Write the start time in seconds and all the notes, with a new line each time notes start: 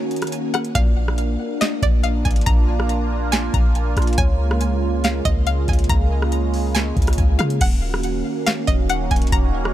Already playing: D#3 A#3 C#4 F#4 G#5
0.11 closed hi-hat
0.16 closed hi-hat
0.22 cross-stick, closed hi-hat
0.27 closed hi-hat
0.32 closed hi-hat
0.54 F#5, cross-stick, closed hi-hat
0.65 closed hi-hat
0.75 A#1 A#3 D4 F4 D5 F5, kick, closed hi-hat
1.08 cross-stick
1.18 closed hi-hat
1.61 D#5, snare, closed hi-hat
1.82 A#1 D5, kick, closed hi-hat
2.03 F5, closed hi-hat
2.25 G#1 G#5, kick, closed hi-hat
2.31 closed hi-hat
2.36 closed hi-hat
2.41 closed hi-hat
2.46 A#1 A#5, kick, closed hi-hat
2.80 cross-stick
2.89 closed hi-hat
3.32 G#5, snare, closed hi-hat
3.54 A#1 A#5, kick, closed hi-hat
3.75 closed hi-hat
3.97 A#1, cross-stick, closed hi-hat
4.02 closed hi-hat
4.07 closed hi-hat
4.13 closed hi-hat
4.18 C#2 C#3 G#3 C#5 G#5, kick, closed hi-hat
4.51 cross-stick
4.61 closed hi-hat
5.04 F5, snare, closed hi-hat
5.25 C#2 D#5, kick, closed hi-hat
5.47 F5, closed hi-hat
5.68 C#2 G#5, kick, closed hi-hat
5.73 closed hi-hat
5.79 closed hi-hat
5.84 closed hi-hat
5.89 C#2 A#5, kick, closed hi-hat
6.22 cross-stick
6.32 closed hi-hat
6.54 open hi-hat
6.75 G#5, snare, closed hi-hat
6.97 C#2, kick, closed hi-hat
7.02 closed hi-hat
7.07 cross-stick, closed hi-hat
7.13 closed hi-hat
7.18 C#2, kick, closed hi-hat
7.39 C#3 F5, cross-stick, closed hi-hat
7.50 closed hi-hat
7.61 D#1 D#3 A#3 C#4 F#4 F#5, kick, closed hi-hat, crash
7.94 cross-stick
8.03 closed hi-hat
8.46 F5, snare, closed hi-hat
8.67 D#1 D#5, kick, closed hi-hat
8.89 F#5, closed hi-hat
9.11 C#1 G#5, kick, closed hi-hat
9.16 closed hi-hat
9.22 closed hi-hat
9.27 closed hi-hat
9.32 D#1 A#5, kick, closed hi-hat
9.65 cross-stick